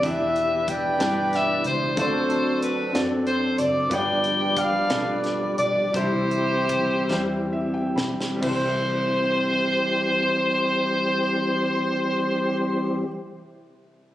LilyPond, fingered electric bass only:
\new Staff \with { instrumentName = "Fingered electric bass" } { \clef bass \time 6/8 \key c \major \tempo 4. = 55 e,4. g,4 des,8 | d,4. fis,4 fis,,8 | g,,4. b,,4 b,,8 | c,4. e,4 b,,8 |
c,2.~ | c,2. | }